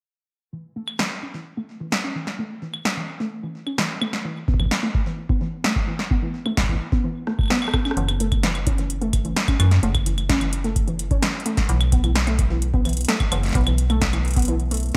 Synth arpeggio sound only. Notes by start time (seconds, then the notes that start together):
0.53 E3
0.76 A3
0.99 E3
1.22 C#4
1.34 E3
1.57 A3
1.81 E3
2.04 C#4
2.15 E3
2.39 A3
2.62 E3
2.85 C#4
2.97 E3
3.20 A3
3.43 E3
3.67 C#4
3.78 E3
4.01 A3
4.25 E3
4.48 B3
4.60 E3
4.83 A3
5.06 E3
5.29 B3
5.41 E3
5.64 A3
5.88 E3
6.11 B3
6.22 E3
6.46 A3
6.69 E3
6.92 B3
7.04 E3
7.27 A3
7.50 B3
7.74 B3
7.85 C#4
7.97 E3
8.20 A3
8.43 E3
8.67 C#4
8.78 E3
9.01 A3
9.25 E3
9.48 C#4
9.60 E3
9.83 A3
10.06 E3
10.29 C#4
10.41 E3
10.64 A3
10.88 E3
11.11 C#4
11.22 E3
11.46 A3
11.69 E3
11.92 B3
12.04 E3
12.27 A3
12.50 E3
12.74 B3
12.85 E3
13.08 A3
13.32 E3
13.55 B3
13.67 E3
13.90 A3
14.13 E3
14.36 B3
14.48 E3
14.71 A3